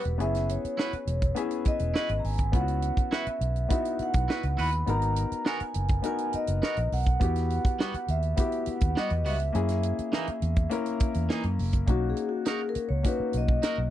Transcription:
Already playing: grand piano G3 B3 E4 F#4 G4, vibraphone B4
0.05 fingered electric bass E1, closed hi-hat
0.18 fingered electric bass F#1, grand piano B3 C#4 E4 G#4, vibraphone E5, closed hi-hat
0.35 snare, closed hi-hat
0.49 vibraphone C#5, closed hi-hat
0.65 muted fingered electric bass stroke, closed hi-hat
0.77 clean electric guitar E4 F#4 B4, snare
0.93 muted fingered electric bass stroke, closed hi-hat
1.07 fingered electric bass E1, closed hi-hat
1.22 kick, closed hi-hat
1.35 grand piano B3 C#4 E4 G#4, closed hi-hat
1.51 closed hi-hat
1.65 vibraphone D#5, muted fingered electric bass stroke, kick, closed hi-hat
1.79 fingered electric bass E1, closed hi-hat
1.94 clean electric guitar E4 F#4 B4, snare
2.09 fingered electric bass G#1, closed hi-hat
2.19 vibraphone A#5
2.24 fingered electric bass G#1, vibraphone G#5, open hi-hat
2.38 kick, closed hi-hat
2.52 fingered electric bass C#2, grand piano B3 C#4 E4 F4, vibraphone F#5, kick, closed hi-hat
2.61 grand piano F#4
2.68 closed hi-hat
2.82 closed hi-hat
2.97 muted fingered electric bass stroke, kick, closed hi-hat
3.11 clean electric guitar E4 F#4 B4, vibraphone E5, snare
3.27 muted fingered electric bass stroke, closed hi-hat
3.41 fingered electric bass B1, closed hi-hat
3.56 closed hi-hat
3.69 grand piano B3 D#4 E4 F#4, kick, closed hi-hat
3.73 vibraphone E5
3.85 closed hi-hat
3.99 vibraphone F#5, muted fingered electric bass stroke, closed hi-hat
4.13 fingered electric bass B1, kick, closed hi-hat
4.28 clean electric guitar E4 F#4 B4, snare
4.43 fingered electric bass C#2, closed hi-hat
4.57 fingered electric bass D#2, clean electric guitar E4 F#4 B4, vibraphone B5, open hi-hat
4.72 closed hi-hat
4.86 fingered electric bass G#1, grand piano B3 D#4 F#4 A#4, vibraphone A#5, closed hi-hat
5.02 closed hi-hat
5.16 closed hi-hat
5.32 muted fingered electric bass stroke, closed hi-hat
5.45 clean electric guitar B3 F#4 A#4, vibraphone G#5, snare
5.60 muted fingered electric bass stroke, closed hi-hat
5.74 fingered electric bass F#1, closed hi-hat
5.88 kick, closed hi-hat
6.02 grand piano B3 D#4 F#4 A#4, vibraphone G#5, closed hi-hat
6.18 closed hi-hat
6.33 vibraphone D#5, muted fingered electric bass stroke, closed hi-hat
6.47 fingered electric bass F#1, closed hi-hat
6.62 clean electric guitar B3 F#4 A#4, snare
6.77 fingered electric bass A#1, closed hi-hat
6.92 fingered electric bass B1, vibraphone F#5, open hi-hat
7.06 kick, closed hi-hat
7.20 fingered electric bass E2, grand piano B3 E4 F#4 G4, kick, closed hi-hat
7.36 snare, closed hi-hat
7.50 closed hi-hat
7.65 muted fingered electric bass stroke, kick, closed hi-hat
7.79 clean electric guitar G3 B3 F#4, snare
7.94 muted fingered electric bass stroke, closed hi-hat
8.08 fingered electric bass D#2, vibraphone E5, closed hi-hat
8.23 closed hi-hat
8.36 grand piano B3 E4 F#4 G4, kick, closed hi-hat
8.52 closed hi-hat
8.66 vibraphone F#5, muted fingered electric bass stroke, closed hi-hat
8.81 fingered electric bass D#2, kick, closed hi-hat
8.96 clean electric guitar G3 B3 F#4, vibraphone D#5, snare
9.10 fingered electric bass E2, closed hi-hat
9.25 fingered electric bass C#2, clean electric guitar G3 B3 F#4, vibraphone E5, open hi-hat
9.40 closed hi-hat
9.53 fingered electric bass F#2, grand piano A#3 C#4 E4 G#4, closed hi-hat
9.69 snare, closed hi-hat
9.83 closed hi-hat
9.99 muted fingered electric bass stroke, closed hi-hat
10.12 clean electric guitar E3 A#3 D#4, snare
10.27 muted fingered electric bass stroke, closed hi-hat
10.42 fingered electric bass E2, closed hi-hat
10.56 kick, closed hi-hat
10.70 grand piano A#3 C#4 E4 A#4, closed hi-hat
10.86 closed hi-hat
11.00 muted fingered electric bass stroke, kick, closed hi-hat
11.14 fingered electric bass E2, closed hi-hat
11.29 clean electric guitar E3 A#3 D#4, snare
11.43 fingered electric bass F#2, closed hi-hat
11.59 fingered electric bass F#1, open hi-hat
11.73 kick, closed hi-hat
11.86 fingered electric bass B1, grand piano A#3 C#4 D#4 F#4, kick, closed hi-hat
11.91 vibraphone F#4
12.10 vibraphone G#4
12.17 closed hi-hat
12.29 vibraphone F#4
12.45 clean electric guitar D#4 F#4 A#4, vibraphone G#4, snare, closed hi-hat
12.69 vibraphone A#4
12.75 muted fingered electric bass stroke, closed hi-hat
12.89 fingered electric bass C#2, vibraphone C#5
13.03 grand piano A#3 C#4 D#4 F#4, kick, closed hi-hat
13.07 vibraphone B4
13.20 muted fingered electric bass stroke
13.33 fingered electric bass B1, closed hi-hat
13.37 vibraphone D#5
13.48 kick
13.63 clean electric guitar D#4 F#4 A#4, snare, closed hi-hat
13.78 fingered electric bass B1

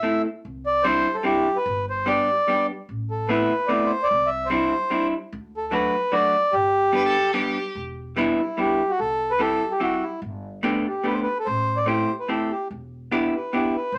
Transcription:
Already playing: accordion E5
0.03 hollow-body jazz guitar A3 C4 E4 A4
0.45 upright bass C2
0.66 accordion D5
0.84 hollow-body jazz guitar G3 C4 D4 E4, accordion C5
1.14 accordion A4
1.23 hollow-body jazz guitar G3 C4 D4 E4, accordion G4
1.56 accordion B4
1.66 upright bass G1
1.90 accordion C5
2.06 hollow-body jazz guitar G3 B3 D4 G4, accordion D5
2.48 hollow-body jazz guitar G3 B3 D4 G4
2.89 upright bass A1
3.11 accordion A4
3.29 hollow-body jazz guitar A3 B3 C4 E4, accordion B4
3.67 hollow-body jazz guitar A3 B3 C4 E4, accordion D5
3.86 accordion C5
4.04 accordion D5
4.11 upright bass C2
4.27 accordion E5
4.46 hollow-body jazz guitar G3, accordion C5
4.50 hollow-body jazz guitar C4 D4 E4
4.90 hollow-body jazz guitar G3 C4 D4 E4
5.33 upright bass D2
5.57 accordion A4
5.71 hollow-body jazz guitar F#3 A3 D4 F#4, accordion B4
6.12 hollow-body jazz guitar F#3 A3 D4 F#4, accordion D5
6.53 upright bass G1, accordion G4
6.92 hollow-body jazz guitar G3 B3 D4 G4, violin B4
7.05 violin A4
7.34 hollow-body jazz guitar G3 B3 D4 G4, violin G4
7.75 upright bass E1
8.16 hollow-body jazz guitar G3 B3 D4 E4
8.40 accordion E4
8.57 hollow-body jazz guitar G3 B3 D4 E4, accordion G4
8.90 accordion F#4
8.99 upright bass C2, accordion A4
9.31 accordion B4
9.39 hollow-body jazz guitar G3 C4 E4 G4, accordion A4
9.71 accordion G4
9.80 hollow-body jazz guitar G3 C4 E4 G4, accordion F#4
10.03 accordion E4
10.22 upright bass G1
10.63 hollow-body jazz guitar A3 B3 D4 G4
10.88 accordion G4
11.04 hollow-body jazz guitar A3 B3 D4 G4, accordion B4
11.13 accordion C5
11.23 accordion B4
11.39 accordion A4
11.46 upright bass A1, accordion C5
11.77 accordion D5
11.86 hollow-body jazz guitar A3 C4 E4 G4, accordion C5
12.20 accordion B4
12.28 hollow-body jazz guitar A3 C4 E4 G4, accordion A4
12.51 accordion G4
12.71 upright bass E1
13.11 hollow-body jazz guitar B3 D4 E4 G4
13.36 accordion B4
13.53 hollow-body jazz guitar B3 D4 E4 G4, accordion G4
13.76 accordion B4
13.92 upright bass C2, accordion C5

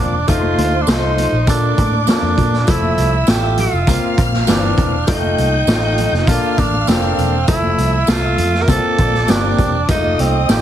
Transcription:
Already playing: grand piano A#3 C4 F4, tenor saxophone D4, string section D5 D6
0.00 fingered electric bass E1
0.27 fingered electric bass F1, grand piano A3 D#4 F4, tenor saxophone F4, string section C5 C6, kick, closed hi-hat, tambourine
0.43 high conga
0.57 fingered electric bass D2, closed hi-hat, muted conga, high conga
0.82 tenor saxophone D4
0.87 fingered electric bass C2, grand piano A3 D#4 F4, tenor saxophone D#4, snare, closed hi-hat, tambourine
1.18 closed hi-hat, muted conga, low conga
1.32 fingered electric bass A#1
1.47 fingered electric bass A#2, grand piano A#3 D4 A4, tenor saxophone D4, string section D5 D6, kick, closed hi-hat, tambourine, muted conga
1.78 fingered electric bass A2, kick, closed hi-hat, muted conga, high conga
1.93 high conga
2.07 grand piano A#3 C#4 A4, tenor saxophone D4, muted fingered electric bass stroke, snare, closed hi-hat, tambourine
2.15 grand piano D4
2.22 fingered electric bass F2, high conga
2.37 fingered electric bass A#2, kick, closed hi-hat, muted conga, low conga
2.53 snare
2.67 fingered electric bass F1, grand piano F3 A3 E4, tenor saxophone E4, string section E5 E6, kick, closed hi-hat, tambourine, muted conga
2.83 high conga
2.98 fingered electric bass C2, closed hi-hat, high conga
3.27 fingered electric bass A1, grand piano A3 E4 F4, tenor saxophone G4, snare, closed hi-hat, tambourine
3.58 tenor saxophone F4, closed hi-hat, low conga
3.73 fingered electric bass F1
3.87 fingered electric bass C2, grand piano A#3 C4 F4, string section F5 F6, kick, closed hi-hat, tambourine, muted conga
4.18 fingered electric bass A#1, kick, closed hi-hat, muted conga, high conga
4.33 snare, high conga
4.47 fingered electric bass G1, grand piano E3 A#3 C4, tenor saxophone D4, snare, closed hi-hat, tambourine, muted conga
4.64 high conga
4.78 fingered electric bass E1, kick, closed hi-hat, muted conga, low conga
5.07 fingered electric bass F1, grand piano A3 D#4 F4, tenor saxophone D#4, string section G5 G6, kick, closed hi-hat, tambourine, muted conga
5.23 high conga
5.38 fingered electric bass C2, closed hi-hat, high conga
5.67 fingered electric bass A1, grand piano A3 D#4 F4, snare, closed hi-hat, tambourine
5.98 closed hi-hat, low conga
6.12 fingered electric bass F1, snare
6.27 fingered electric bass A#1, grand piano A#3 D4 A4, tenor saxophone F4, string section F5 F6, kick, closed hi-hat, tambourine
6.58 fingered electric bass A1, tenor saxophone D4, kick, closed hi-hat, muted conga, high conga
6.74 high conga
6.87 fingered electric bass F1, grand piano A#3 D4 A4, tenor saxophone C4, snare, closed hi-hat, tambourine, muted conga
7.04 high conga
7.18 fingered electric bass E1, closed hi-hat, muted conga, low conga
7.48 fingered electric bass F1, grand piano F3 A3 E4, tenor saxophone E4, string section E5 E6, kick, closed hi-hat, tambourine
7.63 high conga
7.78 fingered electric bass C2, closed hi-hat, muted conga, high conga
8.07 grand piano A3 F4 E5, tenor saxophone F4, snare, closed hi-hat, tambourine
8.38 fingered electric bass F2, closed hi-hat, low conga
8.54 snare
8.62 tenor saxophone A#4
8.68 fingered electric bass C2, grand piano A#3 C4 E4, tenor saxophone A4, string section D5 D6, kick, closed hi-hat, tambourine, muted conga
8.76 grand piano F4
8.98 fingered electric bass A#1, kick, closed hi-hat, muted conga, high conga
9.14 snare, high conga
9.28 fingered electric bass G1, grand piano A#3 C4 G4, tenor saxophone D4, snare, closed hi-hat, tambourine
9.44 high conga
9.59 fingered electric bass E1, kick, closed hi-hat, low conga
9.88 fingered electric bass F1, grand piano G#3 D#4 F4, tenor saxophone D#4, string section D#5 D#6, kick, closed hi-hat, tambourine, muted conga, low conga
9.94 grand piano A3
10.04 high conga
10.19 fingered electric bass C2, tenor saxophone C4, closed hi-hat, muted conga, high conga
10.49 fingered electric bass A1, grand piano A3 D#4 F4, tenor saxophone G4, snare, closed hi-hat, tambourine

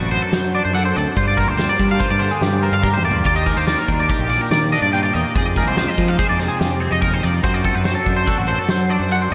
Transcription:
Already playing: clean electric guitar F#2 F#3 C4 D4 F#4
0.00 fingered electric bass A1, clean electric guitar F#4
0.11 clean electric guitar F#2 C5, closed hi-hat
0.22 clean electric guitar A4
0.32 fingered electric bass F#3, clean electric guitar C5, snare, closed hi-hat
0.54 clean electric guitar D4 D5, closed hi-hat
0.65 fingered electric bass F#2, clean electric guitar C5
0.73 clean electric guitar F#2 A4 F#5, snare, closed hi-hat
0.85 clean electric guitar C5
0.95 fingered electric bass D2, clean electric guitar C4 D5, closed hi-hat
1.16 clean electric guitar G2 F4 C5, fingered electric bass G2, kick, closed hi-hat
1.28 clean electric guitar D5
1.37 clean electric guitar A#3 A#4, kick, closed hi-hat
1.48 fingered electric bass D2, clean electric guitar C5
1.57 clean electric guitar G3 C5, snare, closed hi-hat
1.69 clean electric guitar D5
1.77 fingered electric bass G3, clean electric guitar D4, kick, snare, closed hi-hat
1.91 clean electric guitar F5
1.99 clean electric guitar F4 C5, kick, closed hi-hat
2.09 fingered electric bass G2, clean electric guitar G4 D5
2.19 clean electric guitar D3 C5, closed hi-hat
2.31 clean electric guitar G#4
2.41 fingered electric bass G2, clean electric guitar G4, snare, closed hi-hat
2.62 clean electric guitar C4 A#4, closed hi-hat
2.72 fingered electric bass G2, clean electric guitar D4 F5
2.83 clean electric guitar G2 G4 A#4, kick
2.94 clean electric guitar C5, mid tom
3.04 fingered electric bass E2, clean electric guitar A#3 D5
3.11 floor tom
3.24 clean electric guitar D#2 F4 D5, fingered electric bass D#2, kick, closed hi-hat
3.35 clean electric guitar G4 D#5
3.46 clean electric guitar G#3 A#4, kick, closed hi-hat
3.56 fingered electric bass D#2, clean electric guitar A#3 C5
3.67 clean electric guitar D#3 D5, snare, closed hi-hat
3.78 clean electric guitar A#4
3.88 fingered electric bass D#2, clean electric guitar D4, kick, closed hi-hat
4.00 clean electric guitar D5
4.09 clean electric guitar G4 A#4, kick, closed hi-hat
4.19 fingered electric bass A#1, clean electric guitar G4
4.28 clean electric guitar A#2 D5, snare, closed hi-hat
4.41 clean electric guitar A#4
4.51 fingered electric bass D#3, clean electric guitar D5, snare, closed hi-hat
4.72 clean electric guitar D4 D#5, snare, closed hi-hat
4.82 fingered electric bass G2, clean electric guitar D5
4.93 clean electric guitar D#2 F4 G5, closed hi-hat
5.03 clean electric guitar G4 D5
5.13 fingered electric bass E2, clean electric guitar A#3 D#5, closed hi-hat
5.34 clean electric guitar F2 G#4 C5, fingered electric bass F2, kick, closed hi-hat
5.46 clean electric guitar D5
5.56 clean electric guitar G#3 A#4, kick, snare, closed hi-hat
5.68 fingered electric bass C2, clean electric guitar C5
5.77 clean electric guitar F3 C5, snare, closed hi-hat
5.88 clean electric guitar D#5
5.98 fingered electric bass F3, clean electric guitar C4, kick, snare, closed hi-hat
6.08 clean electric guitar D#4 F5
6.19 clean electric guitar G#4 C5, kick, closed hi-hat
6.29 fingered electric bass F2, clean electric guitar D5
6.39 clean electric guitar C3 C5, snare, closed hi-hat
6.48 clean electric guitar G#4
6.59 fingered electric bass F2, clean electric guitar G4, snare, closed hi-hat
6.80 clean electric guitar C4 G#4, closed hi-hat
6.91 fingered electric bass F2, clean electric guitar D#4 D#5
7.02 clean electric guitar D#2 A#4, kick, closed hi-hat
7.14 clean electric guitar C5
7.23 clean electric guitar F2 D5, fingered electric bass F2, snare, closed hi-hat
7.43 clean electric guitar F#2 F#4 C5, fingered electric bass F#2, kick, closed hi-hat
7.54 clean electric guitar D5
7.64 clean electric guitar C4 A4, kick, closed hi-hat
7.75 fingered electric bass F#2, clean electric guitar B4
7.84 clean electric guitar F#3 C5, snare, closed hi-hat
7.95 clean electric guitar A4
8.05 fingered electric bass F#2, clean electric guitar D4, kick, closed hi-hat
8.17 clean electric guitar C5
8.26 clean electric guitar F#4 A4, kick, snare, closed hi-hat
8.38 fingered electric bass A1, clean electric guitar F#4
8.47 clean electric guitar F#2 C5, closed hi-hat
8.59 clean electric guitar A4
8.69 fingered electric bass F#3, clean electric guitar C5, snare, closed hi-hat
8.89 clean electric guitar D4 D5, closed hi-hat
9.00 fingered electric bass F#2, clean electric guitar C5
9.09 clean electric guitar F#2 F#5, closed hi-hat
9.22 clean electric guitar C5
9.31 clean electric guitar E2

